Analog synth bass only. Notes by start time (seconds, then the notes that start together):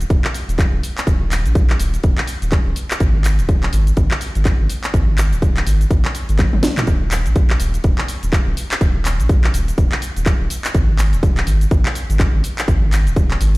0.10 D#1
0.49 D#1
0.73 D#1
1.07 D#1
1.45 A#1
1.80 D#1
2.04 D#1
2.42 D#1
2.66 D#1
3.01 G#1
3.39 D#1
3.73 G#1
3.97 G#1
4.36 G#1
4.60 G#1
4.94 G#1
5.32 D#1
5.66 G#1
5.91 G#1
6.29 G#1
6.54 G#1
6.87 D#1
7.26 A#1
7.61 D#1
7.84 D#1
8.23 D#1
8.47 D#1
8.81 D#1
9.20 A#1
9.54 D#1
9.78 D#1
10.17 D#1
10.41 D#1
10.74 G#1
11.13 D#1
11.47 G#1
11.71 G#1
12.10 G#1
12.34 G#1
12.68 G#1
13.07 D#1
13.41 G#1